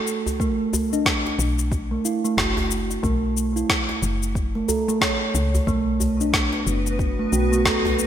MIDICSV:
0, 0, Header, 1, 6, 480
1, 0, Start_track
1, 0, Key_signature, 2, "minor"
1, 0, Tempo, 659341
1, 291, Time_signature, 4, 2, 24, 8
1, 5873, End_track
2, 0, Start_track
2, 0, Title_t, "Ambient pad"
2, 0, Program_c, 0, 92
2, 4124, Note_on_c, 0, 59, 74
2, 4125, Note_on_c, 0, 66, 69
2, 4125, Note_on_c, 0, 71, 89
2, 5873, Note_off_c, 0, 59, 0
2, 5873, Note_off_c, 0, 66, 0
2, 5873, Note_off_c, 0, 71, 0
2, 5873, End_track
3, 0, Start_track
3, 0, Title_t, "Steel tongue drum"
3, 0, Program_c, 1, 114
3, 0, Note_on_c, 1, 69, 74
3, 282, Note_off_c, 1, 69, 0
3, 294, Note_on_c, 1, 57, 93
3, 661, Note_off_c, 1, 57, 0
3, 676, Note_on_c, 1, 62, 69
3, 1141, Note_off_c, 1, 62, 0
3, 1392, Note_on_c, 1, 57, 68
3, 1448, Note_off_c, 1, 57, 0
3, 1492, Note_on_c, 1, 64, 70
3, 1628, Note_off_c, 1, 64, 0
3, 1634, Note_on_c, 1, 57, 74
3, 1721, Note_off_c, 1, 57, 0
3, 1731, Note_on_c, 1, 66, 73
3, 2201, Note_off_c, 1, 66, 0
3, 2208, Note_on_c, 1, 57, 98
3, 2578, Note_off_c, 1, 57, 0
3, 2591, Note_on_c, 1, 64, 67
3, 3058, Note_off_c, 1, 64, 0
3, 3314, Note_on_c, 1, 57, 72
3, 3369, Note_off_c, 1, 57, 0
3, 3410, Note_on_c, 1, 69, 76
3, 3547, Note_off_c, 1, 69, 0
3, 3555, Note_on_c, 1, 57, 78
3, 3642, Note_off_c, 1, 57, 0
3, 3654, Note_on_c, 1, 73, 74
3, 4123, Note_off_c, 1, 73, 0
3, 4131, Note_on_c, 1, 57, 101
3, 4500, Note_off_c, 1, 57, 0
3, 4518, Note_on_c, 1, 62, 72
3, 4982, Note_off_c, 1, 62, 0
3, 5236, Note_on_c, 1, 57, 72
3, 5290, Note_off_c, 1, 57, 0
3, 5334, Note_on_c, 1, 66, 73
3, 5469, Note_off_c, 1, 66, 0
3, 5475, Note_on_c, 1, 57, 76
3, 5562, Note_off_c, 1, 57, 0
3, 5572, Note_on_c, 1, 69, 71
3, 5873, Note_off_c, 1, 69, 0
3, 5873, End_track
4, 0, Start_track
4, 0, Title_t, "FM bass"
4, 0, Program_c, 2, 39
4, 1010, Note_on_c, 2, 35, 100
4, 1448, Note_off_c, 2, 35, 0
4, 1730, Note_on_c, 2, 30, 92
4, 2167, Note_off_c, 2, 30, 0
4, 2211, Note_on_c, 2, 35, 90
4, 2648, Note_off_c, 2, 35, 0
4, 2929, Note_on_c, 2, 30, 103
4, 3367, Note_off_c, 2, 30, 0
4, 3892, Note_on_c, 2, 37, 103
4, 4078, Note_off_c, 2, 37, 0
4, 4129, Note_on_c, 2, 35, 98
4, 4807, Note_off_c, 2, 35, 0
4, 4852, Note_on_c, 2, 30, 96
4, 5288, Note_off_c, 2, 30, 0
4, 5332, Note_on_c, 2, 35, 95
4, 5873, Note_off_c, 2, 35, 0
4, 5873, End_track
5, 0, Start_track
5, 0, Title_t, "Djembe"
5, 193, Note_on_c, 9, 64, 78
5, 265, Note_off_c, 9, 64, 0
5, 532, Note_on_c, 9, 63, 60
5, 535, Note_on_c, 9, 64, 82
5, 605, Note_off_c, 9, 63, 0
5, 608, Note_off_c, 9, 64, 0
5, 914, Note_on_c, 9, 63, 61
5, 922, Note_on_c, 9, 62, 52
5, 987, Note_off_c, 9, 63, 0
5, 994, Note_off_c, 9, 62, 0
5, 1158, Note_on_c, 9, 62, 33
5, 1231, Note_off_c, 9, 62, 0
5, 1253, Note_on_c, 9, 63, 58
5, 1325, Note_off_c, 9, 63, 0
5, 1872, Note_on_c, 9, 64, 98
5, 1945, Note_off_c, 9, 64, 0
5, 2113, Note_on_c, 9, 62, 32
5, 2186, Note_off_c, 9, 62, 0
5, 2832, Note_on_c, 9, 62, 46
5, 2832, Note_on_c, 9, 63, 55
5, 2904, Note_off_c, 9, 63, 0
5, 2905, Note_off_c, 9, 62, 0
5, 3313, Note_on_c, 9, 63, 32
5, 3386, Note_off_c, 9, 63, 0
5, 3412, Note_on_c, 9, 64, 78
5, 3485, Note_off_c, 9, 64, 0
5, 3555, Note_on_c, 9, 63, 62
5, 3628, Note_off_c, 9, 63, 0
5, 4037, Note_on_c, 9, 64, 78
5, 4110, Note_off_c, 9, 64, 0
5, 4369, Note_on_c, 9, 64, 77
5, 4376, Note_on_c, 9, 63, 53
5, 4442, Note_off_c, 9, 64, 0
5, 4449, Note_off_c, 9, 63, 0
5, 4751, Note_on_c, 9, 62, 52
5, 4753, Note_on_c, 9, 63, 54
5, 4824, Note_off_c, 9, 62, 0
5, 4826, Note_off_c, 9, 63, 0
5, 4995, Note_on_c, 9, 62, 32
5, 5068, Note_off_c, 9, 62, 0
5, 5088, Note_on_c, 9, 63, 62
5, 5161, Note_off_c, 9, 63, 0
5, 5716, Note_on_c, 9, 64, 98
5, 5789, Note_off_c, 9, 64, 0
5, 5873, End_track
6, 0, Start_track
6, 0, Title_t, "Drums"
6, 54, Note_on_c, 9, 69, 76
6, 127, Note_off_c, 9, 69, 0
6, 198, Note_on_c, 9, 69, 39
6, 271, Note_off_c, 9, 69, 0
6, 290, Note_on_c, 9, 36, 99
6, 297, Note_on_c, 9, 69, 34
6, 363, Note_off_c, 9, 36, 0
6, 370, Note_off_c, 9, 69, 0
6, 537, Note_on_c, 9, 69, 83
6, 610, Note_off_c, 9, 69, 0
6, 678, Note_on_c, 9, 69, 46
6, 751, Note_off_c, 9, 69, 0
6, 770, Note_on_c, 9, 36, 104
6, 773, Note_on_c, 9, 38, 94
6, 777, Note_on_c, 9, 69, 31
6, 843, Note_off_c, 9, 36, 0
6, 845, Note_off_c, 9, 38, 0
6, 850, Note_off_c, 9, 69, 0
6, 1017, Note_on_c, 9, 69, 75
6, 1089, Note_off_c, 9, 69, 0
6, 1156, Note_on_c, 9, 69, 45
6, 1229, Note_off_c, 9, 69, 0
6, 1249, Note_on_c, 9, 36, 96
6, 1253, Note_on_c, 9, 69, 32
6, 1322, Note_off_c, 9, 36, 0
6, 1326, Note_off_c, 9, 69, 0
6, 1495, Note_on_c, 9, 69, 82
6, 1568, Note_off_c, 9, 69, 0
6, 1639, Note_on_c, 9, 69, 44
6, 1712, Note_off_c, 9, 69, 0
6, 1730, Note_on_c, 9, 36, 100
6, 1733, Note_on_c, 9, 38, 100
6, 1737, Note_on_c, 9, 69, 34
6, 1803, Note_off_c, 9, 36, 0
6, 1806, Note_off_c, 9, 38, 0
6, 1810, Note_off_c, 9, 69, 0
6, 1973, Note_on_c, 9, 69, 76
6, 2046, Note_off_c, 9, 69, 0
6, 2117, Note_on_c, 9, 69, 45
6, 2190, Note_off_c, 9, 69, 0
6, 2210, Note_on_c, 9, 36, 100
6, 2214, Note_on_c, 9, 69, 33
6, 2283, Note_off_c, 9, 36, 0
6, 2287, Note_off_c, 9, 69, 0
6, 2455, Note_on_c, 9, 69, 76
6, 2527, Note_off_c, 9, 69, 0
6, 2598, Note_on_c, 9, 69, 44
6, 2671, Note_off_c, 9, 69, 0
6, 2690, Note_on_c, 9, 36, 101
6, 2691, Note_on_c, 9, 38, 94
6, 2695, Note_on_c, 9, 69, 32
6, 2763, Note_off_c, 9, 36, 0
6, 2764, Note_off_c, 9, 38, 0
6, 2768, Note_off_c, 9, 69, 0
6, 2933, Note_on_c, 9, 69, 74
6, 3006, Note_off_c, 9, 69, 0
6, 3078, Note_on_c, 9, 69, 43
6, 3151, Note_off_c, 9, 69, 0
6, 3169, Note_on_c, 9, 36, 102
6, 3175, Note_on_c, 9, 69, 30
6, 3242, Note_off_c, 9, 36, 0
6, 3248, Note_off_c, 9, 69, 0
6, 3414, Note_on_c, 9, 69, 81
6, 3487, Note_off_c, 9, 69, 0
6, 3561, Note_on_c, 9, 69, 45
6, 3633, Note_off_c, 9, 69, 0
6, 3649, Note_on_c, 9, 36, 96
6, 3652, Note_on_c, 9, 38, 98
6, 3656, Note_on_c, 9, 69, 34
6, 3722, Note_off_c, 9, 36, 0
6, 3725, Note_off_c, 9, 38, 0
6, 3729, Note_off_c, 9, 69, 0
6, 3895, Note_on_c, 9, 69, 76
6, 3968, Note_off_c, 9, 69, 0
6, 4039, Note_on_c, 9, 69, 42
6, 4112, Note_off_c, 9, 69, 0
6, 4130, Note_on_c, 9, 36, 97
6, 4135, Note_on_c, 9, 69, 31
6, 4202, Note_off_c, 9, 36, 0
6, 4208, Note_off_c, 9, 69, 0
6, 4374, Note_on_c, 9, 69, 71
6, 4447, Note_off_c, 9, 69, 0
6, 4520, Note_on_c, 9, 69, 45
6, 4592, Note_off_c, 9, 69, 0
6, 4610, Note_on_c, 9, 36, 97
6, 4613, Note_on_c, 9, 38, 88
6, 4617, Note_on_c, 9, 69, 29
6, 4683, Note_off_c, 9, 36, 0
6, 4686, Note_off_c, 9, 38, 0
6, 4690, Note_off_c, 9, 69, 0
6, 4857, Note_on_c, 9, 69, 68
6, 4930, Note_off_c, 9, 69, 0
6, 4999, Note_on_c, 9, 69, 43
6, 5072, Note_off_c, 9, 69, 0
6, 5090, Note_on_c, 9, 36, 99
6, 5097, Note_on_c, 9, 69, 28
6, 5163, Note_off_c, 9, 36, 0
6, 5170, Note_off_c, 9, 69, 0
6, 5336, Note_on_c, 9, 69, 77
6, 5409, Note_off_c, 9, 69, 0
6, 5482, Note_on_c, 9, 69, 41
6, 5554, Note_off_c, 9, 69, 0
6, 5571, Note_on_c, 9, 36, 94
6, 5573, Note_on_c, 9, 38, 89
6, 5577, Note_on_c, 9, 69, 33
6, 5644, Note_off_c, 9, 36, 0
6, 5646, Note_off_c, 9, 38, 0
6, 5650, Note_off_c, 9, 69, 0
6, 5817, Note_on_c, 9, 69, 77
6, 5873, Note_off_c, 9, 69, 0
6, 5873, End_track
0, 0, End_of_file